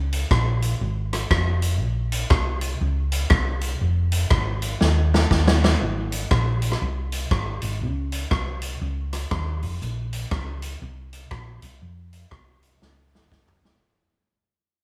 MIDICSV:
0, 0, Header, 1, 3, 480
1, 0, Start_track
1, 0, Tempo, 500417
1, 1731, Time_signature, 4, 2, 24, 8
1, 14229, End_track
2, 0, Start_track
2, 0, Title_t, "Fingered electric bass"
2, 0, Program_c, 0, 33
2, 0, Note_on_c, 0, 37, 88
2, 220, Note_off_c, 0, 37, 0
2, 298, Note_on_c, 0, 34, 83
2, 703, Note_off_c, 0, 34, 0
2, 776, Note_on_c, 0, 32, 95
2, 1182, Note_off_c, 0, 32, 0
2, 1258, Note_on_c, 0, 29, 98
2, 1740, Note_off_c, 0, 29, 0
2, 1740, Note_on_c, 0, 34, 100
2, 2144, Note_off_c, 0, 34, 0
2, 2215, Note_on_c, 0, 36, 92
2, 2621, Note_off_c, 0, 36, 0
2, 2696, Note_on_c, 0, 37, 92
2, 3102, Note_off_c, 0, 37, 0
2, 3174, Note_on_c, 0, 36, 94
2, 3581, Note_off_c, 0, 36, 0
2, 3655, Note_on_c, 0, 29, 92
2, 4062, Note_off_c, 0, 29, 0
2, 4133, Note_on_c, 0, 32, 86
2, 4541, Note_off_c, 0, 32, 0
2, 4617, Note_on_c, 0, 39, 102
2, 5023, Note_off_c, 0, 39, 0
2, 5094, Note_on_c, 0, 39, 90
2, 5501, Note_off_c, 0, 39, 0
2, 5578, Note_on_c, 0, 32, 95
2, 5984, Note_off_c, 0, 32, 0
2, 6056, Note_on_c, 0, 34, 90
2, 6462, Note_off_c, 0, 34, 0
2, 6538, Note_on_c, 0, 36, 102
2, 6943, Note_off_c, 0, 36, 0
2, 7017, Note_on_c, 0, 32, 82
2, 7267, Note_off_c, 0, 32, 0
2, 7314, Note_on_c, 0, 32, 89
2, 7496, Note_on_c, 0, 37, 90
2, 7510, Note_off_c, 0, 32, 0
2, 7902, Note_off_c, 0, 37, 0
2, 7976, Note_on_c, 0, 36, 87
2, 8382, Note_off_c, 0, 36, 0
2, 8454, Note_on_c, 0, 37, 102
2, 8861, Note_off_c, 0, 37, 0
2, 8937, Note_on_c, 0, 39, 79
2, 9235, Note_on_c, 0, 29, 95
2, 9250, Note_off_c, 0, 39, 0
2, 9389, Note_off_c, 0, 29, 0
2, 9416, Note_on_c, 0, 34, 103
2, 9823, Note_off_c, 0, 34, 0
2, 9897, Note_on_c, 0, 37, 97
2, 10303, Note_off_c, 0, 37, 0
2, 10376, Note_on_c, 0, 36, 97
2, 10782, Note_off_c, 0, 36, 0
2, 10853, Note_on_c, 0, 34, 104
2, 11105, Note_off_c, 0, 34, 0
2, 11150, Note_on_c, 0, 36, 93
2, 11305, Note_off_c, 0, 36, 0
2, 11335, Note_on_c, 0, 41, 92
2, 11742, Note_off_c, 0, 41, 0
2, 11817, Note_on_c, 0, 36, 89
2, 12223, Note_off_c, 0, 36, 0
2, 12301, Note_on_c, 0, 37, 101
2, 12705, Note_off_c, 0, 37, 0
2, 12775, Note_on_c, 0, 36, 92
2, 13181, Note_off_c, 0, 36, 0
2, 14229, End_track
3, 0, Start_track
3, 0, Title_t, "Drums"
3, 120, Note_on_c, 9, 42, 96
3, 216, Note_off_c, 9, 42, 0
3, 297, Note_on_c, 9, 36, 107
3, 298, Note_on_c, 9, 37, 113
3, 393, Note_off_c, 9, 36, 0
3, 394, Note_off_c, 9, 37, 0
3, 597, Note_on_c, 9, 42, 85
3, 693, Note_off_c, 9, 42, 0
3, 1082, Note_on_c, 9, 42, 87
3, 1084, Note_on_c, 9, 37, 59
3, 1178, Note_off_c, 9, 42, 0
3, 1180, Note_off_c, 9, 37, 0
3, 1254, Note_on_c, 9, 36, 104
3, 1254, Note_on_c, 9, 37, 127
3, 1350, Note_off_c, 9, 36, 0
3, 1350, Note_off_c, 9, 37, 0
3, 1554, Note_on_c, 9, 42, 90
3, 1650, Note_off_c, 9, 42, 0
3, 2032, Note_on_c, 9, 42, 100
3, 2128, Note_off_c, 9, 42, 0
3, 2208, Note_on_c, 9, 37, 115
3, 2213, Note_on_c, 9, 36, 118
3, 2304, Note_off_c, 9, 37, 0
3, 2309, Note_off_c, 9, 36, 0
3, 2504, Note_on_c, 9, 42, 89
3, 2600, Note_off_c, 9, 42, 0
3, 2990, Note_on_c, 9, 42, 88
3, 3086, Note_off_c, 9, 42, 0
3, 3165, Note_on_c, 9, 37, 110
3, 3171, Note_on_c, 9, 36, 112
3, 3261, Note_off_c, 9, 37, 0
3, 3267, Note_off_c, 9, 36, 0
3, 3466, Note_on_c, 9, 42, 84
3, 3562, Note_off_c, 9, 42, 0
3, 3949, Note_on_c, 9, 42, 100
3, 4045, Note_off_c, 9, 42, 0
3, 4129, Note_on_c, 9, 37, 113
3, 4133, Note_on_c, 9, 36, 123
3, 4225, Note_off_c, 9, 37, 0
3, 4229, Note_off_c, 9, 36, 0
3, 4430, Note_on_c, 9, 42, 93
3, 4526, Note_off_c, 9, 42, 0
3, 4611, Note_on_c, 9, 38, 59
3, 4707, Note_off_c, 9, 38, 0
3, 4933, Note_on_c, 9, 38, 68
3, 5029, Note_off_c, 9, 38, 0
3, 5093, Note_on_c, 9, 36, 104
3, 5093, Note_on_c, 9, 38, 75
3, 5189, Note_off_c, 9, 36, 0
3, 5189, Note_off_c, 9, 38, 0
3, 5252, Note_on_c, 9, 38, 96
3, 5348, Note_off_c, 9, 38, 0
3, 5412, Note_on_c, 9, 38, 94
3, 5508, Note_off_c, 9, 38, 0
3, 5870, Note_on_c, 9, 42, 97
3, 5966, Note_off_c, 9, 42, 0
3, 6052, Note_on_c, 9, 37, 112
3, 6055, Note_on_c, 9, 36, 109
3, 6148, Note_off_c, 9, 37, 0
3, 6151, Note_off_c, 9, 36, 0
3, 6348, Note_on_c, 9, 42, 89
3, 6442, Note_on_c, 9, 37, 73
3, 6444, Note_off_c, 9, 42, 0
3, 6538, Note_off_c, 9, 37, 0
3, 6830, Note_on_c, 9, 42, 92
3, 6926, Note_off_c, 9, 42, 0
3, 7014, Note_on_c, 9, 36, 113
3, 7014, Note_on_c, 9, 37, 127
3, 7109, Note_off_c, 9, 37, 0
3, 7110, Note_off_c, 9, 36, 0
3, 7305, Note_on_c, 9, 42, 89
3, 7401, Note_off_c, 9, 42, 0
3, 7788, Note_on_c, 9, 42, 95
3, 7884, Note_off_c, 9, 42, 0
3, 7971, Note_on_c, 9, 37, 112
3, 7974, Note_on_c, 9, 36, 115
3, 8067, Note_off_c, 9, 37, 0
3, 8070, Note_off_c, 9, 36, 0
3, 8264, Note_on_c, 9, 42, 96
3, 8360, Note_off_c, 9, 42, 0
3, 8754, Note_on_c, 9, 42, 85
3, 8756, Note_on_c, 9, 37, 56
3, 8850, Note_off_c, 9, 42, 0
3, 8852, Note_off_c, 9, 37, 0
3, 8933, Note_on_c, 9, 37, 122
3, 8934, Note_on_c, 9, 36, 109
3, 9029, Note_off_c, 9, 37, 0
3, 9030, Note_off_c, 9, 36, 0
3, 9232, Note_on_c, 9, 46, 53
3, 9328, Note_off_c, 9, 46, 0
3, 9416, Note_on_c, 9, 44, 64
3, 9512, Note_off_c, 9, 44, 0
3, 9713, Note_on_c, 9, 42, 97
3, 9809, Note_off_c, 9, 42, 0
3, 9893, Note_on_c, 9, 37, 111
3, 9895, Note_on_c, 9, 36, 116
3, 9989, Note_off_c, 9, 37, 0
3, 9991, Note_off_c, 9, 36, 0
3, 10188, Note_on_c, 9, 42, 95
3, 10284, Note_off_c, 9, 42, 0
3, 10672, Note_on_c, 9, 42, 83
3, 10768, Note_off_c, 9, 42, 0
3, 10848, Note_on_c, 9, 37, 115
3, 10852, Note_on_c, 9, 36, 110
3, 10944, Note_off_c, 9, 37, 0
3, 10948, Note_off_c, 9, 36, 0
3, 11146, Note_on_c, 9, 42, 98
3, 11242, Note_off_c, 9, 42, 0
3, 11632, Note_on_c, 9, 42, 98
3, 11728, Note_off_c, 9, 42, 0
3, 11810, Note_on_c, 9, 37, 125
3, 11814, Note_on_c, 9, 36, 117
3, 11906, Note_off_c, 9, 37, 0
3, 11910, Note_off_c, 9, 36, 0
3, 12110, Note_on_c, 9, 42, 89
3, 12206, Note_off_c, 9, 42, 0
3, 12296, Note_on_c, 9, 38, 61
3, 12392, Note_off_c, 9, 38, 0
3, 12614, Note_on_c, 9, 38, 69
3, 12710, Note_off_c, 9, 38, 0
3, 12774, Note_on_c, 9, 36, 102
3, 12774, Note_on_c, 9, 38, 74
3, 12869, Note_off_c, 9, 36, 0
3, 12870, Note_off_c, 9, 38, 0
3, 12931, Note_on_c, 9, 43, 94
3, 13027, Note_off_c, 9, 43, 0
3, 13094, Note_on_c, 9, 38, 97
3, 13190, Note_off_c, 9, 38, 0
3, 14229, End_track
0, 0, End_of_file